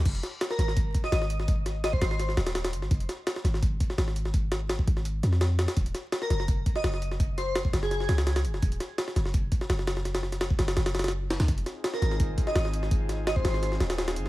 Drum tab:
CC |x-------------------------------|--------------------------------|--------------------------------|--------------------------------|
HH |x-x-x---x---x---x---x---x---x---|x---x---x---x---x---x-x-x-x-x---|x-x-x---x---x---x---x---x---x---|x---x---x---x---x---x---x---x-x-|
SD |----o---o-o-o-o-------o-o-o---o-|----o---o---o-o-o-o-o-o-o-o---o-|----o---o-o-o-o-------o-o-o---o-|----o---o-----o-----o-o-o---o-o-|
BD |o---------------o---o-----------|o---------o---------------------|o---------------o---o-----------|o---------o-o-------------------|

CC |--------------------------------|--------------------------------|--------------------------------|--------------------------------|
HH |x-x-x---x---x---x---x---x---x---|x---x---x---x---x---x-x-x-x-x---|x-x-x---x---x---x---x---x---x---|x-x---x-x---x-x-x-x-xxxx----x-x-|
SD |----o---o-o-o-o-------o-o-o---o-|----o---o---o-o-o-o-o-o-o-o---o-|----o---o-o-o-o-------o-o-o-o-o-|o-o-o-o-o---o-o-o-o-oooo----o-o-|
BD |o---------------o---o-----------|o---------o---------------------|o---------------o---o-----------|----------o---------------------|

CC |--------------------------------|--------------------------------|
HH |x-x-x---x---x---x---x---x---x---|x---x---x---x---x---x-x-x-x-x---|
SD |----o---o-o-o-o-------o-o-o---o-|----o---o---o-o-o-o-o-o-o-o---o-|
BD |o---------------o---o-----------|o---------o---------------------|